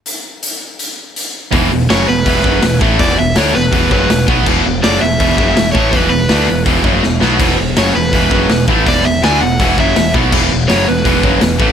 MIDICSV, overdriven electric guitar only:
0, 0, Header, 1, 2, 480
1, 0, Start_track
1, 0, Tempo, 366300
1, 79, Time_signature, 4, 2, 24, 8
1, 15358, End_track
2, 0, Start_track
2, 0, Title_t, "Overdriven electric guitar"
2, 0, Program_c, 0, 29
2, 2493, Note_on_c, 0, 73, 86
2, 2731, Note_off_c, 0, 73, 0
2, 2736, Note_on_c, 0, 71, 93
2, 3639, Note_off_c, 0, 71, 0
2, 3936, Note_on_c, 0, 74, 113
2, 4178, Note_off_c, 0, 74, 0
2, 4183, Note_on_c, 0, 76, 97
2, 4414, Note_off_c, 0, 76, 0
2, 4414, Note_on_c, 0, 73, 91
2, 4650, Note_on_c, 0, 71, 107
2, 4651, Note_off_c, 0, 73, 0
2, 5096, Note_off_c, 0, 71, 0
2, 5142, Note_on_c, 0, 71, 73
2, 5582, Note_off_c, 0, 71, 0
2, 6339, Note_on_c, 0, 74, 97
2, 6569, Note_off_c, 0, 74, 0
2, 6574, Note_on_c, 0, 76, 127
2, 7489, Note_off_c, 0, 76, 0
2, 7494, Note_on_c, 0, 73, 85
2, 7723, Note_off_c, 0, 73, 0
2, 7723, Note_on_c, 0, 71, 105
2, 7975, Note_off_c, 0, 71, 0
2, 7990, Note_on_c, 0, 71, 78
2, 8669, Note_off_c, 0, 71, 0
2, 10198, Note_on_c, 0, 73, 77
2, 10418, Note_off_c, 0, 73, 0
2, 10424, Note_on_c, 0, 71, 96
2, 11323, Note_off_c, 0, 71, 0
2, 11640, Note_on_c, 0, 74, 115
2, 11858, Note_on_c, 0, 76, 92
2, 11870, Note_off_c, 0, 74, 0
2, 12099, Note_off_c, 0, 76, 0
2, 12113, Note_on_c, 0, 80, 101
2, 12332, Note_off_c, 0, 80, 0
2, 12332, Note_on_c, 0, 78, 119
2, 12808, Note_off_c, 0, 78, 0
2, 12840, Note_on_c, 0, 76, 81
2, 13270, Note_off_c, 0, 76, 0
2, 13998, Note_on_c, 0, 73, 87
2, 14259, Note_off_c, 0, 73, 0
2, 14259, Note_on_c, 0, 71, 92
2, 15358, Note_off_c, 0, 71, 0
2, 15358, End_track
0, 0, End_of_file